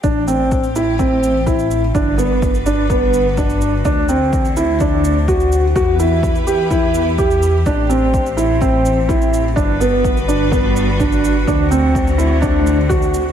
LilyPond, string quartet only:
\new Staff \with { instrumentName = "String quartet" } { \time 4/4 \key a \dorian \tempo 4 = 126 <a c' g'>1 | <g d' fis' b'>1 | <d a c'>1 | <e e' g' b'>1 |
<a c'>1 | <g d' fis' b'>1 | <d a c'>1 | }